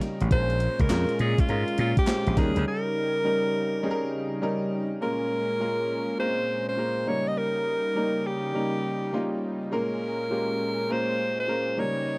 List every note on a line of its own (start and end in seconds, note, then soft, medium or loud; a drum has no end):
0.00 0.28 C#3 medium
0.00 0.28 G3 medium
0.00 0.33 G3 medium
0.00 0.31 C#4 medium
0.00 0.28 D#4 medium
0.00 0.33 D#4 medium
0.00 0.32 A#4 loud
0.00 snare medium
0.00 closed hi-hat medium
0.21 0.28 A1 medium
0.21 closed hi-hat medium
0.31 0.67 A#1 loud
0.31 2.35 A#2 medium
0.31 0.84 G#3 medium
0.31 2.35 G#3 medium
0.31 0.84 C#4 medium
0.31 2.35 C#4 medium
0.31 0.84 F4 medium
0.31 0.84 A#4 medium
0.31 0.82 C5 loud
0.31 kick loud
0.31 closed hi-hat medium
0.50 closed hi-hat medium
0.60 closed hi-hat medium
0.80 0.87 C#2 loud
0.80 1.20 A#4 loud
0.80 kick medium
0.80 closed hi-hat soft
0.89 1.04 F2 medium
0.89 1.42 G#3 medium
0.89 1.42 C#4 medium
0.89 1.43 F4 medium
0.89 1.43 A#4 medium
0.89 snare loud
0.89 clap medium
0.89 closed hi-hat medium
1.09 closed hi-hat soft
1.19 1.33 A#2 loud
1.19 1.41 G#4 medium
1.19 closed hi-hat medium
1.38 1.79 F4 medium
1.38 kick loud
1.38 closed hi-hat medium
1.48 1.63 G#2 medium
1.48 2.01 G#3 medium
1.48 2.01 C#4 medium
1.48 2.02 F4 medium
1.48 2.02 A#4 medium
1.48 closed hi-hat medium
1.68 closed hi-hat soft
1.78 1.92 A#2 loud
1.78 1.97 F4 medium
1.78 closed hi-hat medium
1.97 2.40 G4 loud
1.97 kick loud
1.97 closed hi-hat medium
2.07 2.37 G#3 medium
2.07 2.35 C#4 medium
2.07 2.37 F4 medium
2.07 2.37 C5 medium
2.07 snare loud
2.07 clap medium
2.07 closed hi-hat medium
2.27 2.34 A#1 medium
2.27 closed hi-hat medium
2.36 2.51 D#2 loud
2.36 4.99 C#3 medium
2.36 3.16 G3 medium
2.36 4.99 G3 medium
2.36 3.16 C#4 medium
2.36 4.99 D#4 medium
2.36 3.16 D#4 medium
2.36 2.67 G#4 medium
2.36 3.16 A#4 medium
2.36 kick medium
2.36 snare medium
2.36 closed hi-hat medium
2.56 2.64 D2 loud
2.56 closed hi-hat medium
2.68 4.39 A#4 loud
3.24 3.78 G3 medium
3.24 3.78 C#4 medium
3.24 3.78 D#4 medium
3.24 3.78 A#4 medium
3.83 4.36 G3 loud
3.83 4.37 C#4 medium
3.83 4.37 D#4 medium
3.83 3.92 G#4 medium
3.91 4.40 A#4 loud
4.42 4.95 G3 medium
4.42 4.95 C#4 medium
4.42 4.96 D#4 medium
4.42 4.96 A#4 loud
5.01 7.05 A#2 medium
5.01 5.54 G#3 medium
5.01 7.05 G#3 medium
5.01 5.54 A#3 medium
5.01 5.54 C#4 medium
5.01 7.05 C#4 medium
5.01 5.55 F4 medium
5.01 5.55 A#4 loud
5.01 6.16 A#4 loud
5.60 6.13 G#3 medium
5.60 6.13 A#3 medium
5.60 6.13 C#4 medium
5.60 6.13 F4 medium
5.60 6.14 A#4 medium
6.19 6.72 G#3 medium
6.19 6.72 A#3 medium
6.19 6.28 C4 medium
6.19 6.72 F4 medium
6.19 6.72 A#4 medium
6.19 6.65 C5 loud
6.26 6.75 C#4 medium
6.69 7.10 C5 loud
6.77 7.07 G#3 medium
6.77 7.05 A#3 medium
6.77 7.06 C#4 medium
6.77 7.07 F4 medium
6.77 7.06 A#4 medium
7.07 9.69 C#3 medium
7.07 7.86 G3 medium
7.07 9.69 G3 medium
7.07 7.87 A#3 medium
7.07 7.87 C#4 medium
7.07 9.69 D#4 medium
7.07 7.87 D#4 medium
7.07 7.87 A#4 medium
7.07 7.29 C#5 loud
7.28 7.40 D#5 medium
7.38 8.28 A#4 loud
7.95 8.48 G3 medium
7.95 8.48 A#3 medium
7.95 8.49 C#4 medium
7.95 8.49 D#4 medium
7.95 8.49 A#4 medium
8.27 9.43 G4 loud
8.54 9.07 G3 medium
8.54 9.07 A#3 medium
8.54 9.07 C#4 medium
8.54 9.07 D#4 medium
8.54 9.08 A#4 medium
9.13 9.66 G3 medium
9.13 9.66 A#3 medium
9.13 9.66 C#4 medium
9.13 9.66 D#4 medium
9.13 9.66 F4 medium
9.71 11.76 A#2 medium
9.71 10.25 G#3 loud
9.71 11.76 G#3 medium
9.71 10.25 A#3 medium
9.71 10.25 C#4 medium
9.71 11.76 C#4 medium
9.71 10.25 F4 medium
9.71 10.25 A#4 loud
9.71 10.93 A#4 loud
10.30 10.83 G#3 medium
10.30 10.84 A#3 medium
10.30 10.84 C#4 medium
10.30 10.84 F4 medium
10.30 10.84 G4 medium
10.89 11.42 G#3 medium
10.89 11.42 A#3 medium
10.89 11.43 C#4 medium
10.89 11.43 F4 medium
10.89 11.43 A#4 medium
10.89 11.39 C5 loud
11.40 11.81 C5 loud
11.48 11.78 G#3 medium
11.48 11.76 A#3 medium
11.48 11.77 C#4 medium
11.48 11.78 F4 medium
11.48 11.77 A#4 medium
11.77 12.18 C#3 medium
11.77 12.18 G3 medium
11.77 12.18 A#3 medium
11.77 12.18 C#4 medium
11.77 12.18 D#4 medium
11.77 12.18 A#4 medium
11.77 12.18 C#5 loud